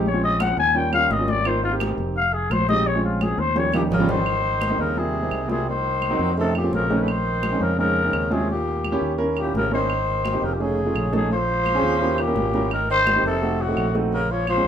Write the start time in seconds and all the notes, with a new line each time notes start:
Already playing: A#1
0.06 C#5, high conga
0.13 G#3 C4 C#4 F4
0.23 D#5, high conga
0.40 F#5, high conga, claves
0.57 D#2 G#5, high conga
0.74 G3 A#3 C#4 F4 G5, high conga
0.92 G3 A#3 C#4 F4 F5, high conga, claves
1.10 G#1 D#5, high conga
1.19 G3 A#3 C#4 F4
1.28 D5, high conga
1.45 A#3 C4 D#4 F4 C5, high conga, claves
1.64 A#3 C4 D#4 F4, high conga
1.71 A#3 C4 D#4 G4
1.80 high conga, claves
1.98 F1, high conga
2.16 F5, high conga
2.33 G#4, high conga
2.50 A#1 C5, high conga, claves
2.68 G#3 C4 D#4 G4 D#5, high conga
2.87 C#5, high conga
2.95 G#3 C4 C#4 F4
3.04 F4, high conga
3.21 G#4, high conga, claves
3.38 D#2 C5
3.55 G3 A#3 C#4 F4 C#5, low conga
3.73 A#2 G3 A#3 C#4 D#4 G4, low conga, claves
3.91 G#1 C#3 A#4, low conga
4.00 G3 A#3 C#4 F4
4.09 D#3 C5, low conga
4.26 high conga, claves
4.44 high conga
4.61 high conga, claves
4.70 G3 A#3 C4 D#4
4.79 D#2 C#3 A#4
4.96 C3 G3 A#3 C4 F4 G#4, high conga
5.15 high conga
5.22 G3 A#3 C4 D#4
5.31 C2, high conga, claves
5.48 C3 G3 A#3 C4 F4 G#4, high conga
5.67 D#3 C5, high conga
5.85 high conga
6.02 high conga, claves
6.10 F#3 A#3 C4 D#4
6.19 F2
6.37 C3 A3 C4 C#4 D#4 A4, high conga
6.55 A#2 G4, high conga, claves
6.63 A3 C4 C#4 F4
6.72 A#1 C#3 A#4, high conga
6.90 A3 C4 C#4 D#4, high conga
7.01 C#3 B4
7.08 D#3 C5, high conga, claves
7.26 high conga
7.43 high conga, claves
7.52 G#3 C4 C#4 D#4
7.60 F2 C#3 A#4
7.78 C#3 G#3 C4 C#4 D#4 A#4, high conga
7.96 high conga
8.04 G#3 C4 C#4 D#4
8.13 D#2, high conga, claves
8.30 C3 G#3 C4 C#4 F4 G#4, high conga
8.49 A#2 G4, high conga
8.67 high conga
8.84 high conga, claves
8.92 A#3 C#4 E4 G4
9.01 D#2
9.18 A#3 C#4 E4 A#4, high conga
9.37 A#2 G4, high conga, claves
9.45 A#3 C#4 E4 G4
9.54 G#1 C#3 A#4, high conga
9.71 D#3 A#3 C#4 E4 A#4 C5
9.90 high conga, claves
10.08 high conga
10.25 high conga, claves
10.33 A#3 C4 D#4 G4
10.42 F1 C#3 A#4
10.53 A#2 G4
10.60 C#3 A3 C#4 D#4 G#4, high conga
10.78 high conga
10.86 A3 C#4 D#4 F4
10.95 A#1, high conga, claves
11.12 B2 A3 C#4 D#4 G#4 A4, high conga
11.31 F3 C5, high conga
11.49 high conga
11.66 high conga, claves
11.74 C4 C#4 F4 G#4
11.82 D#2
12.01 A#3 C#4 E4 G4, high conga
12.18 A#2 G4, high conga, claves
12.27 A#3 C#4 E4 A#4
12.35 G#1, high conga
12.54 A#3 C#4 E4 A#4, high conga
12.71 D#3 A#4, high conga, claves
12.89 D#3 C5, high conga
13.06 high conga, claves
13.15 A#3 C4 D#4 G4
13.23 F1 C3 A4
13.42 A3 C4 D#4 F#4, high conga
13.60 A2 F#4, high conga
13.68 A3 C4 D#4 F#4
13.77 A#1, high conga, claves
13.94 A3 C4 D#4 F#4, high conga
14.12 C#3 A#4, high conga
14.30 F3 C#5, high conga
14.47 F3 C5, high conga, claves
14.57 G#3 C4 C#4 F4